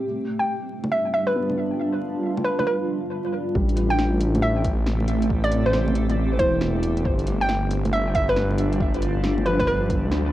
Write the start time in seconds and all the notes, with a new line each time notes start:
Already playing: G4
0.05 G3
0.24 D4
0.36 F4 G5
0.84 low bongo
0.92 E5
0.97 F5
1.14 E5
1.27 B4
1.36 B3
1.50 low bongo
1.55 D4
2.37 low bongo
2.44 B4
2.59 B4, low bongo
2.67 B4
3.54 A1 G3 A3, kick
3.69 G4, closed hi-hat
3.74 C4, closed hi-hat
3.90 G5
3.99 snare
4.15 E5
4.20 closed hi-hat
4.35 closed hi-hat, low bongo
4.42 E5
4.64 kick, closed hi-hat
4.86 snare
5.00 low bongo
5.08 A1, closed hi-hat
5.22 closed hi-hat
5.30 kick
5.44 D5, closed hi-hat
5.52 closed hi-hat
5.66 A1 C5
5.73 snare
5.88 low bongo
5.95 closed hi-hat
6.10 closed hi-hat, low bongo
6.39 E1 E3 C5, kick, closed hi-hat
6.54 E1
6.61 snare
6.83 closed hi-hat
6.97 closed hi-hat
7.05 G1 G3, kick
7.17 D4, closed hi-hat
7.27 closed hi-hat
7.41 G5
7.49 snare
7.54 F4
7.60 F5
7.71 closed hi-hat
7.85 closed hi-hat, low bongo
7.93 E5
8.15 E5, kick, closed hi-hat
8.29 B4
8.36 snare
8.51 low bongo
8.58 G1, closed hi-hat
8.73 closed hi-hat
8.81 kick
8.94 closed hi-hat
9.02 closed hi-hat
9.17 G1
9.24 snare
9.38 low bongo
9.46 F3 B4, closed hi-hat
9.60 B4, kick, closed hi-hat, low bongo
9.67 B4
9.90 kick, closed hi-hat
10.04 D2
10.11 snare